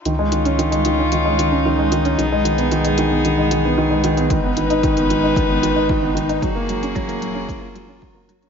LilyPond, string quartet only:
\new Staff \with { instrumentName = "String quartet" } { \time 4/4 \key cis \mixolydian \tempo 4 = 113 << { <cis' eis'>1 | <b gis'>1 | <gis b'>1 | <ais gis'>1 | } \\ { dis'1~ | dis'1 | dis'1 | fis'1 | } >> }